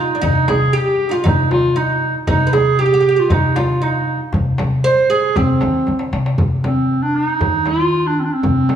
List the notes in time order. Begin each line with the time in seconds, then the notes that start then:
Already playing: D#4 F4
0.10 darbuka ka
0.15 D4
0.21 C3 D#4, frame drum, darbuka dum
0.48 C3 G#4, darbuka tek, frame drum
0.73 G4, darbuka ka
1.01 darbuka ka
1.09 D#4 F4
1.13 F4
1.24 C3 D#4, frame drum, darbuka dum
1.39 darbuka ka
1.51 F4, darbuka tek, frame drum
1.76 D#4, darbuka ka
1.89 darbuka ka
2.02 darbuka ka
2.15 darbuka ka
2.27 C3 D#4, darbuka dum, frame drum
2.47 B4
2.53 G#4, darbuka tek, frame drum
2.78 G4, darbuka ka
2.86 G4
2.94 G4
3.00 G4
3.05 G4, darbuka ka
3.16 F4 G4
3.30 C3 D#4, darbuka dum, frame drum
3.43 darbuka ka
3.56 F4, darbuka tek, frame drum
3.82 D#4, darbuka ka
3.95 darbuka ka
4.07 darbuka ka
4.20 darbuka ka
4.33 C3, darbuka dum, frame drum
4.58 C3, darbuka tek, frame drum
4.84 C5
5.10 G#4, darbuka ka
5.36 C3 C4, frame drum, darbuka dum
5.48 darbuka ka
5.61 D#3, darbuka tek, frame drum
5.74 darbuka ka
5.87 D3, darbuka tek
5.99 darbuka ka
6.13 C3, darbuka tek
6.26 darbuka ka
6.38 C3, frame drum, darbuka dum
6.63 C4, darbuka tek, frame drum
6.90 darbuka ka
7.02 D4
7.15 D#4, darbuka ka
7.41 D#3, darbuka dum, frame drum
7.66 F4, darbuka tek, frame drum
7.80 darbuka ka
7.92 darbuka ka
8.05 D4, darbuka ka
8.20 C4
8.25 D4
8.33 C4
8.43 C3, frame drum, darbuka dum
8.69 darbuka tek, frame drum